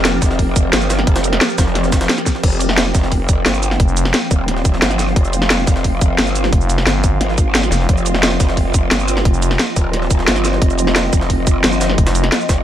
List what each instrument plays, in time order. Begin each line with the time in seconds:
Already playing: wobble bass F1, synth drone F3 C4 G4 A#4
0.05 snare, closed hi-hat
0.13 snare
0.22 wobble bass F1, kick, snare, closed hi-hat, open hi-hat, shaker
0.30 snare
0.39 kick, closed hi-hat, open hi-hat
0.56 wobble bass F1, kick, closed hi-hat, shaker
0.73 wobble bass G1, snare, closed hi-hat
0.82 closed hi-hat, shaker
0.90 snare, closed hi-hat, open hi-hat, shaker
0.99 snare, closed hi-hat
1.07 wobble bass F1, kick, closed hi-hat
1.16 snare, closed hi-hat, shaker
1.24 closed hi-hat, shaker
1.33 snare, closed hi-hat
1.41 snare, closed hi-hat
1.50 shaker
1.58 wobble bass F1, kick, snare, closed hi-hat, open hi-hat, shaker
1.67 snare
1.75 snare, closed hi-hat
1.84 snare, shaker
1.92 kick, snare, closed hi-hat, shaker
2.01 snare, closed hi-hat
2.09 snare, closed hi-hat
2.18 snare, closed hi-hat, shaker
2.26 kick, snare, closed hi-hat, open hi-hat, shaker
2.35 snare
2.43 wobble bass F1, synth drone F4 F5, kick, closed hi-hat, crash
2.52 closed hi-hat, shaker
2.60 closed hi-hat, shaker
2.69 snare
2.78 snare, closed hi-hat
2.86 snare
2.95 wobble bass F1, kick, snare, closed hi-hat, open hi-hat, shaker
3.03 snare
3.12 kick, closed hi-hat, open hi-hat
3.29 wobble bass F1, kick, closed hi-hat, shaker
3.46 wobble bass G1, snare, closed hi-hat
3.54 closed hi-hat, shaker
3.63 closed hi-hat, open hi-hat, shaker
3.71 snare
3.80 fm bass F1, kick, closed hi-hat
3.88 shaker
3.97 closed hi-hat, shaker
4.05 snare
4.14 snare, closed hi-hat
4.31 wobble bass D#1, kick, closed hi-hat, open hi-hat, shaker
4.48 snare, closed hi-hat
4.57 snare
4.65 kick, closed hi-hat, shaker
4.74 snare
4.82 wobble bass G1, snare, closed hi-hat
4.91 snare, closed hi-hat, shaker
4.99 snare, closed hi-hat, open hi-hat, shaker
5.08 snare
5.16 wobble bass F1, kick, closed hi-hat
5.25 closed hi-hat, shaker
5.33 closed hi-hat, shaker
5.42 snare
5.50 snare, closed hi-hat
5.59 snare
5.67 wobble bass F1, kick, snare, closed hi-hat, open hi-hat, shaker
5.76 snare
5.84 kick, closed hi-hat, open hi-hat
6.01 wobble bass F1, kick, closed hi-hat, shaker
6.18 wobble bass G1, snare, closed hi-hat
6.27 closed hi-hat, shaker
6.35 closed hi-hat, open hi-hat, shaker
6.44 snare
6.53 fm bass F1, kick, closed hi-hat
6.61 shaker
6.70 closed hi-hat, shaker
6.78 snare
6.87 fm bass G1, snare, closed hi-hat
7.04 kick, closed hi-hat, open hi-hat, shaker
7.21 wobble bass G#1, snare, closed hi-hat
7.29 snare
7.38 kick, closed hi-hat, shaker
7.55 snare, closed hi-hat
7.63 snare, closed hi-hat, shaker
7.72 fm bass F1, snare, closed hi-hat, open hi-hat, shaker
7.80 snare
7.89 wobble bass F1, synth drone D#5, kick, closed hi-hat
7.97 closed hi-hat, shaker
8.06 closed hi-hat, shaker
8.14 snare
8.23 snare, closed hi-hat
8.32 snare
8.40 wobble bass F1, kick, snare, closed hi-hat, open hi-hat, shaker
8.49 snare
8.57 kick, closed hi-hat, open hi-hat
8.74 wobble bass F1, kick, closed hi-hat, shaker
8.91 wobble bass G1, snare, closed hi-hat
9.00 closed hi-hat, shaker
9.08 closed hi-hat, open hi-hat, shaker
9.17 snare
9.25 fm bass F1, kick, closed hi-hat
9.34 shaker
9.42 closed hi-hat, shaker
9.51 snare
9.59 snare, closed hi-hat
9.76 wobble bass D#1, kick, closed hi-hat, open hi-hat, shaker
9.93 snare, closed hi-hat
10.02 snare
10.10 kick, closed hi-hat, shaker
10.19 snare
10.28 wobble bass G1, snare, closed hi-hat
10.36 snare, closed hi-hat, shaker
10.45 snare, closed hi-hat, open hi-hat, shaker
10.53 snare
10.62 wobble bass F1, kick, closed hi-hat
10.70 closed hi-hat, shaker
10.79 closed hi-hat, shaker
10.87 snare
10.96 snare, closed hi-hat
11.04 snare
11.13 wobble bass F1, kick, closed hi-hat, open hi-hat, shaker
11.21 snare
11.30 kick, closed hi-hat, open hi-hat
11.47 wobble bass F1, kick, closed hi-hat, shaker
11.64 wobble bass G1, snare, closed hi-hat
11.72 closed hi-hat, shaker
11.81 snare, closed hi-hat, open hi-hat, shaker
11.89 snare
11.98 fm bass F1, kick, closed hi-hat
12.07 snare, closed hi-hat, shaker
12.15 closed hi-hat, shaker
12.24 snare, closed hi-hat
12.32 snare, closed hi-hat
12.41 shaker
12.49 wobble bass F1, kick, snare, closed hi-hat, open hi-hat, shaker